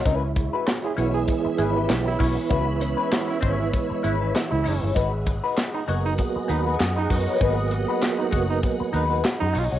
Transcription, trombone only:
X:1
M:4/4
L:1/16
Q:"Swing 16ths" 1/4=98
K:C#dor
V:1 name="Trombone"
z4 z G z G z2 G z2 E2 z | z4 z E z E z2 E z2 E3 | z4 z D z D z2 D z2 D2 z | z4 z D z D z2 D z2 D2 z |]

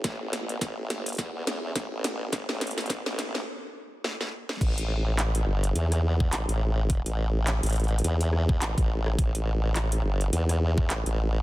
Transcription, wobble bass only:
X:1
M:4/4
L:1/16
Q:"Swing 16ths" 1/4=105
K:C
V:1 name="Wobble bass" clef=bass
A,,,6 G,,,2 E,,4 A,,, A,,,3- | A,,, A,,,4 A,,,3 z8 | A,,,6 G,,,2 E,,4 A,,, A,,,3- | A,,, A,,,4 A,,,3 E,,4 A,,, A,,,3 |
A,,,6 G,,,2 E,,4 A,,, A,,,3 |]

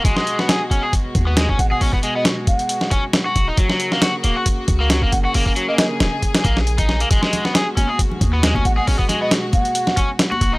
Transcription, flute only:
X:1
M:4/4
L:1/16
Q:"Swing 16ths" 1/4=136
K:G#m
V:1 name="Flute"
z12 z2 f f | z3 d z2 f4 z6 | z12 z2 f f | z3 d d z8 z3 |
z12 z2 f f | z3 d z2 f4 z6 |]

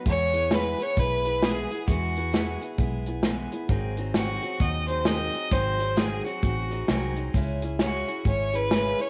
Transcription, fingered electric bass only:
X:1
M:4/4
L:1/8
Q:"Swing" 1/4=132
K:E
V:1 name="Fingered electric bass" clef=bass
E,,4 B,,,4 | E,,4 B,,,4 | G,,,4 D,,4 | G,,,4 A,,,2 ^B,,,2 |
C,,4 G,,,4 |]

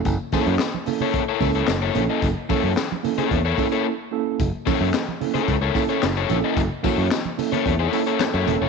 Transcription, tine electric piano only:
X:1
M:4/4
L:1/8
Q:1/4=110
K:F#mix
V:1 name="Tine electric piano"
[A,CE=A] [^A,CE=A] z [^A,CE=A] z [^A,CE=A] z [^A,CE=A] | z [A,CE=A] z [^A,CE=A] z [^A,CE=A] z [^A,CE=A] | z [A,CE=A] z [^A,CE=A] z [^A,CE=A] z [^A,CE=A] | z [A,CEF] z [A,CE=A] z [^A,CE=A] A [^A,CE=Ac] |]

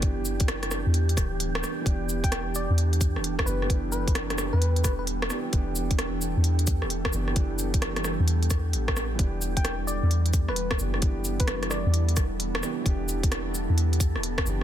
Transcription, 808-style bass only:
X:1
M:4/4
L:1/16
Q:"Swing 16ths" 1/4=131
K:Em
V:1 name="808-style bass" clef=bass
F,,,6- F,,, E,,3 D,,,4 z2 | E,,,6- E,,, E,,4 E,,,3 F,,,2- | F,,,6- F,,, E,,3 E,,,4 z2 | E,,,6- E,,, E,,4 E,,,3 F,,,2- |
F,,,6- F,,, E,,4- E,, A,,,4 | E,,,6- E,,, E,,4 E,,,3 F,,,2- | F,,,6- F,,, E,,3 E,,,4 z2 | E,,,6- E,,, E,,4 E,,,3 F,,,2 |]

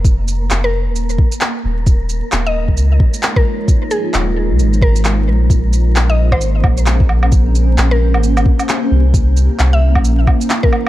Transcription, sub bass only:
X:1
M:4/4
L:1/16
Q:"Swing 16ths" 1/4=132
K:Bbdor
V:1 name="Sub bass" clef=bass
F,,,4 F,,,3 E,,,3 z4 E,,,2- | E,,,3 z E,,,3 D,,3 z6 | z4 E,,,3 D,, A,,,6 B,,,2 | B,,,6- B,,, A,,,3 B,,,6- |
B,,,4 B,,,3 A,,,3 z4 C,,2- | C,,3 z C,,3 B,,,3 z6 |]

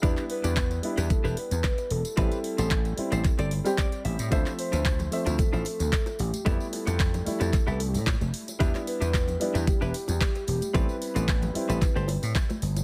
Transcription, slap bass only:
X:1
M:4/4
L:1/16
Q:"Swing 16ths" 1/4=112
K:Am
V:1 name="Slap bass" clef=bass
E,, z2 E,,3 z E,, z E,,, z E,, z2 E,,, z | A,,, z2 A,,,3 z A,,, z G,,,2 z3 A,,, A,, | D,, z2 D,,3 z D,, z A,,, z D,, z2 A,,, z | F,, z2 F,,3 z F,, z C,,2 A,,2 F,,, z2 |
E,, z2 E,,3 z E,, z E,,, z E,, z2 E,,, z | A,,, z2 A,,,3 z A,,, z G,,,2 A,, z2 G,,,2 |]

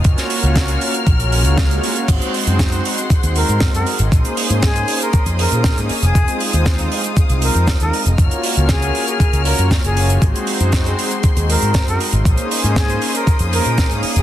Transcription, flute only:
X:1
M:4/4
L:1/16
Q:1/4=118
K:Bbm
V:1 name="Flute"
z16 | z8 z2 B3 B2 z | z4 A3 B2 z B3 z2 A- | A2 z8 B3 B2 z |
z4 A3 A3 B2 z A3 | z8 z2 B3 B2 z | z4 A3 B2 z B3 z2 A |]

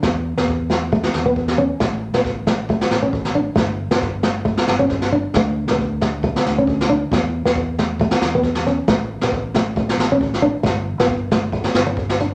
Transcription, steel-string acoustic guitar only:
X:1
M:4/4
L:1/16
Q:"Swing 16ths" 1/4=136
K:Edor
V:1 name="Steel-string acoustic guitar"
A,2 z B,2 z A,2 A,2 z B,2 z C2 | A,2 z B,2 z A,2 A,2 z C2 z D2 | A,2 z B,2 z A,2 A,2 z C2 z D2 | A,2 z B,2 z A,2 A,2 z C2 z D2 |
A,2 z B,2 z A,2 A,2 z B,2 z C2 | A,2 z B,2 z A,2 A,2 z C2 z D2 | A,2 z B,2 z A,2 A,2 z4 D2 |]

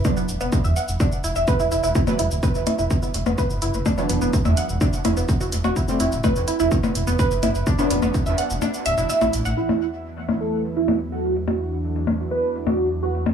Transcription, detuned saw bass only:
X:1
M:4/4
L:1/16
Q:1/4=126
K:Bphr
V:1 name="Detuned saw bass" clef=bass
z2 E,,, E,,, z E,, z E,,, z2 E,,, E,,, z E,,, E,,, E,,, | z2 E,,, D,,, z E,,, z E,,, z2 E,,, E,,, z F,,, F,,, F,,, | z2 E,,, E,,, z E,, z E,,, z2 E,,, E,,, z E,,, E,,, E,,, | z2 E,,, D,,, z E,,, z E,,, z2 E,,, E,,, z F,,, F,,, F,,, |
z2 E,,, E,,, z E,, z E,,, z2 D,,, E,,, z A,,, A,,, A,,, | z16 | z16 |]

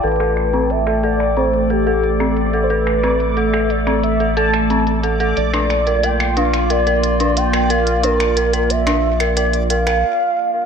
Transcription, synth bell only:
X:1
M:4/4
L:1/16
Q:1/4=90
K:Am
V:1 name="Synth bell"
A A z C z A A z C z A A z C z A | A z C z A A z C z A A z C z A A | z D z _B B z D z B B z D z B B z | D z _B B z D z B B z B B z4 |]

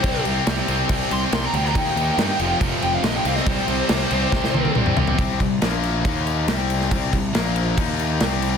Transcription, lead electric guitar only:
X:1
M:4/4
L:1/16
Q:1/4=140
K:Cm
V:1 name="Lead electric guitar"
c2 z8 c' z c' b g b | g8 z2 g f e g f e | c12 z4 | z16 |
z16 |]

